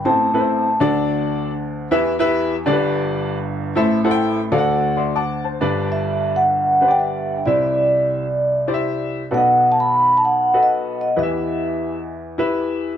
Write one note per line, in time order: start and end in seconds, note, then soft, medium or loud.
0.05 0.77 A1 medium
0.05 0.77 A2 medium
0.05 0.28 C4 medium
0.05 0.28 E4 medium
0.05 0.28 A4 medium
0.05 0.28 C5 medium
0.05 0.94 A5 medium
0.34 0.68 C4 medium
0.34 0.68 E4 medium
0.34 0.68 A4 medium
0.34 0.39 B4 medium
0.40 0.71 C5 medium
0.80 1.87 D2 medium
0.80 1.87 D3 medium
0.80 1.50 D4 medium
0.80 1.50 F#4 medium
0.80 1.50 A4 medium
0.80 1.51 D5 loud
1.91 2.62 E2 medium
1.91 2.62 E3 medium
1.91 2.13 E4 loud
1.91 2.14 G4 medium
1.91 2.14 B4 medium
1.91 2.14 E5 loud
2.19 2.53 E4 loud
2.19 2.53 G4 medium
2.19 2.54 B4 medium
2.19 2.54 E5 loud
2.66 3.72 G1 medium
2.66 3.72 G2 medium
2.66 3.35 D4 medium
2.66 3.36 G4 medium
2.66 2.70 A4 medium
2.66 3.36 D5 loud
2.73 3.39 B4 medium
3.75 4.47 A1 medium
3.75 4.47 A2 medium
3.75 3.98 E4 medium
3.75 3.99 A4 medium
3.75 3.99 C5 medium
3.75 3.99 E5 loud
4.04 4.38 E4 loud
4.04 4.39 A4 medium
4.04 4.39 C5 medium
4.04 4.09 F#5 medium
4.11 4.42 G5 loud
4.52 5.58 D2 medium
4.52 5.58 D3 medium
4.52 5.21 F#4 loud
4.52 5.21 A4 medium
4.52 4.96 D5 medium
4.52 4.56 F5 medium
4.58 5.01 F#5 loud
4.97 5.13 D5 medium
4.97 5.14 E5 medium
4.97 5.14 C6 medium
5.16 5.43 F#5 medium
5.16 5.43 A5 medium
5.16 5.42 D6 medium
5.44 5.88 C5 medium
5.44 5.88 A5 medium
5.61 7.43 G1 medium
5.61 7.42 G2 medium
5.61 6.38 D4 medium
5.61 6.38 G4 medium
5.61 6.39 B4 medium
5.61 6.39 D5 medium
5.92 6.39 E5 medium
6.36 6.93 F#5 loud
6.81 7.34 D4 medium
6.81 7.35 G4 medium
6.81 7.35 B4 medium
6.81 6.87 C5 medium
6.88 7.38 D5 medium
6.88 7.00 G5 loud
7.00 7.48 E5 medium
7.46 9.28 C2 medium
7.46 9.28 C3 medium
7.46 8.24 E4 medium
7.46 8.24 G4 medium
7.46 8.24 C5 medium
7.46 8.81 D5 medium
7.46 8.24 E5 medium
8.67 9.20 E4 medium
8.67 9.20 G4 medium
8.67 9.21 C5 medium
8.67 8.72 D5 medium
8.74 9.23 E5 medium
9.31 11.13 B1 medium
9.31 11.14 B2 medium
9.31 10.09 F#4 medium
9.31 10.09 A4 medium
9.31 10.09 B4 medium
9.31 9.39 D5 medium
9.31 9.72 F#5 loud
9.37 10.12 D#5 medium
9.72 9.75 A5 loud
9.80 10.18 B5 loud
10.17 10.25 A5 loud
10.25 10.64 F#5 medium
10.54 11.06 F#4 medium
10.54 11.06 A4 medium
10.54 11.06 B4 medium
10.54 11.06 D#5 medium
10.63 11.00 D#5 medium
11.01 11.19 D#5 medium
11.16 12.97 E2 medium
11.16 12.97 E3 medium
11.16 11.94 E4 medium
11.16 11.95 G4 medium
11.16 11.95 B4 medium
11.16 11.24 D#5 medium
11.16 11.89 E5 medium
11.23 11.98 E5 medium
12.38 12.91 E4 medium
12.38 12.91 G4 medium
12.38 12.92 B4 medium
12.38 12.92 E5 medium